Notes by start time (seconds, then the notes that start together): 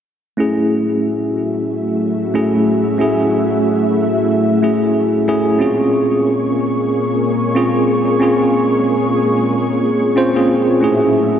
0.37 A3 C#4 E4 F#4 G#4 E5
2.34 A3 C#4 E4 G#4
2.98 A3 C#4 E4 G#4
4.62 A3 C#4 E4 G#4
5.28 A3 C#4 E4 G#4
5.58 A#3 C4 C#4 F4 G#4 C#6
7.55 C4 C#4 F4 G#4
8.20 C4 C#4 F4 G#4
10.16 C4 C#4 F4 C5
10.35 C4 C#4 F4 G#4
10.81 A3 C#4 E4 F#4 G#4 E5